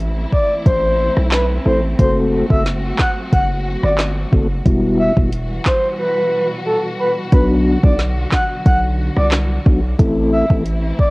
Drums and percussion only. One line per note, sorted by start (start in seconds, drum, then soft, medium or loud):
0.32 kick medium
0.66 kick medium
0.66 closed hi-hat medium
1.17 cross-stick medium
1.32 snare loud
1.32 clap loud
1.32 closed hi-hat medium
1.99 kick loud
1.99 closed hi-hat medium
2.50 kick medium
2.66 snare medium
2.66 closed hi-hat medium
2.99 kick medium
2.99 snare loud
2.99 clap medium
3.33 kick medium
3.33 closed hi-hat medium
3.83 cross-stick medium
3.98 snare loud
3.98 clap medium
3.98 closed hi-hat medium
4.33 kick loud
4.66 kick loud
4.66 closed hi-hat medium
5.17 kick medium
5.32 closed hi-hat medium
5.65 kick medium
5.65 snare loud
5.65 clap medium
7.32 kick loud
7.32 closed hi-hat medium
7.83 kick medium
7.99 snare medium
7.99 closed hi-hat medium
8.32 kick medium
8.32 snare loud
8.32 clap medium
8.66 kick medium
8.66 closed hi-hat medium
9.17 cross-stick medium
9.32 snare loud
9.32 clap medium
9.32 closed hi-hat medium
9.66 kick loud
9.99 kick loud
9.99 closed hi-hat medium
10.50 kick medium
10.66 closed hi-hat medium
10.99 kick medium